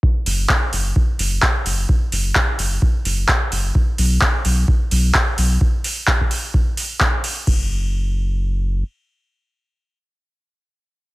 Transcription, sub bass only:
X:1
M:4/4
L:1/8
Q:"Swing 16ths" 1/4=129
K:Bdor
V:1 name="Sub bass" clef=bass
z F,,, z F,,, z F,,, z F,,, | z F,,, z F,,, z F,,, z F,,, | z B,,, z B,,, z B,,, z B,,, | z8 |
F,,,6 z2 | z8 |]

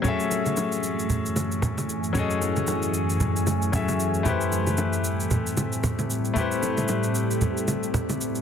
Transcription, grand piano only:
X:1
M:4/4
L:1/8
Q:"Swing 16ths" 1/4=114
K:F#dor
V:1 name="Grand piano"
[F,CGAe]8 | [F,CGAd]6 [F,CGAe]2 | [A,E=GB=c]8 | [A,E=GB=c]8 |]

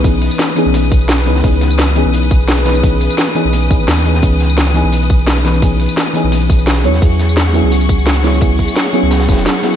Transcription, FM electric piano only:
X:1
M:4/4
L:1/8
Q:"Swing 16ths" 1/4=172
K:C#m
V:1 name="FM electric piano"
[E,B,CDG]3 [E,B,CDG]4 [E,B,CDB] | [E,B,CDG]3 [E,B,CDG]4 [E,B,CDB] | [E,B,CDG]3 [E,B,CDG]2 [E,B,CDG]2 [E,B,CDG] | [E,B,CDG]3 [E,B,CDG]4 [E,B,CDB] |
[E,B,CDG]3 [E,B,CDG]4 [F,B,CEc] | [F,B,CEG]3 [F,B,CEG]4 [F,B,CEc] | [F,B,CEG]3 [F,B,CEG]2 [F,B,CEG]2 [F,B,CEG] |]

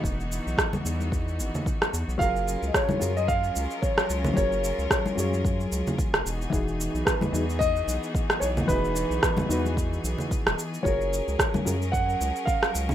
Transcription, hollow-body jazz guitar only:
X:1
M:4/4
L:1/8
Q:"Swing 16ths" 1/4=111
K:F#
V:1 name="Hollow-body jazz guitar"
z8 | [F,EGA]3 [F,EGA] z4 | [F,EGA]3 [F,EGc]4 z | [=E,DFG]3 [E,DFG] z4 |
[=E,DFG]3 [E,DFB]4- [E,DFB] | [F,EGA]3 [F,EGA] z4 |]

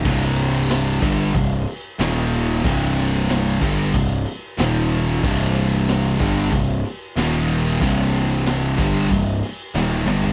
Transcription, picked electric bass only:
X:1
M:4/4
L:1/8
Q:1/4=93
K:Cm
V:1 name="Picked electric bass" clef=bass
C,,,3 G,,, C,,, z E,,,2 | C,,,3 G,,, C,,, z E,,,2 | C,,,3 G,,, C,,, z E,,,2 | C,,,3 G,,, C,,, z E,,, G,,, |]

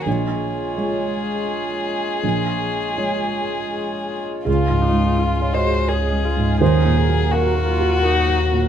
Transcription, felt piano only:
X:1
M:3/4
L:1/8
Q:1/4=84
K:Bbm
V:1 name="Felt piano"
z6 | z6 | A3 e z2 | c2 B4 |]
V:2 name="Felt piano" clef=bass
B,,,2 [A,Fd]4 | B,,,2 [A,Fd]4 | (3D,, A,, A, (3F d A (3d A, A,, | (3E,, B,, G, (3f B G (3B G, B,, |]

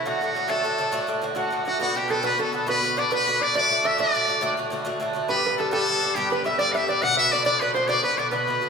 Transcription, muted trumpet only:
X:1
M:12/8
L:1/16
Q:3/8=138
K:Dmix
V:1 name="Muted trumpet"
F6 A8 z4 F4 F2 | F2 G2 A2 B2 A2 A2 B4 d2 B4 d2 | d4 e2 d8 z8 z2 | B4 A2 A6 G2 B2 e2 d3/2 f/2 e2 d2 |
f2 e2 d2 d2 B2 c2 d2 B2 d2 B6 |]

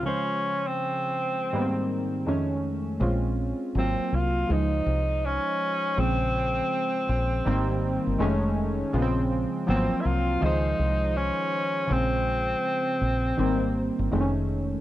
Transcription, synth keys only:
X:1
M:4/4
L:1/8
Q:"Swing 16ths" 1/4=81
K:Bbdor
V:1 name="Synth keys" clef=bass
[D,F,A,c]4 [A,,E,G,B,_C=C]2 [F,,E,^G,=A,^C]2 | [A,CDF]2 [_G,B,CF]2 [=E,F,A,_Ec]4 | [D,F,A,C]4 [E,G,B,C]2 [E,^G,=A,^C]2 | [D,F,A,_C=C]2 [F,_G,B,_C=C]2 [E,F,A,c]4 |
[D,F,A,C]4 [E,G,B,C]2 [E,^G,=A,C^C]2 |]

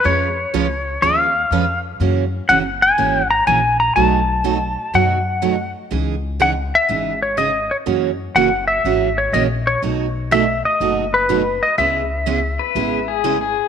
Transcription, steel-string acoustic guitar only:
X:1
M:4/4
L:1/8
Q:"Swing" 1/4=123
K:C#m
V:1 name="Steel-string acoustic guitar"
[^E,G,C^EB] z [E,G,CEB] z [E,G,CEB] z [E,G,CEB] z | [C,E,^A,CF] z [C,E,A,CF] z [C,E,A,CF] z [C,E,A,CF] z | [B,,F,A,DF] z [B,,F,A,DF] z [B,,F,A,DF] z [B,,F,A,DF] z | [C,E,DG] z [C,E,DG] z [C,E,DG] z [C,E,DG] z |
[C,E,^A,CF] z [C,E,A,CF] z [C,E,A,CF] z [C,E,A,CF] z | [B,,F,A,DF] z [B,,F,A,DF] z [B,,F,A,DF] z [B,,F,A,DF] z | [C,G,B,EG] z [C,G,B,EG] z [C,G,B,EG] z [C,G,B,EG] z |]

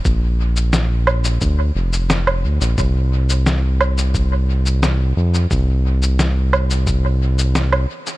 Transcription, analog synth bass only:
X:1
M:4/4
L:1/16
Q:1/4=88
K:Bb
V:1 name="Analog synth bass" clef=bass
B,,,8 D,,2 F,,,4 D,, B,,, | C,,12- C,,2 F,,2 | C,,12- C,,2 z2 |]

